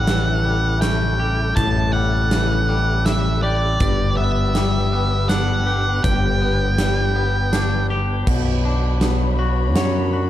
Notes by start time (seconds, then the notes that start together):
Already playing: A1 A2 C#3 G3 A3 E4 A4 F#5
0.07 E3, snare, closed hi-hat
0.45 G3
0.81 C#4 G5, snare, closed hi-hat
1.20 G4
1.56 A1 A2 A5, kick, closed hi-hat
1.93 G3 F#5
2.31 E3, snare, closed hi-hat
2.69 G3
3.06 E5, snare, closed hi-hat
3.43 G4 D5
3.79 G1 G2 D3 B3 G4 B4, kick, closed hi-hat
4.17 B3 E5
4.55 G3, snare, closed hi-hat
4.93 B3
5.29 D4 F#5, snare, closed hi-hat
5.67 G4
6.04 G1 G2 G5, kick, closed hi-hat
6.42 B3
6.78 G3, snare, closed hi-hat
7.16 B3
7.53 D4, snare, closed hi-hat
7.90 G4
8.27 B1 B2 D4 F#4 C#5 B5, kick, crash
8.65 D4
9.01 B3, snare, closed hi-hat
9.39 F#4
9.75 F#2 C#5, snare, closed hi-hat
10.13 F#4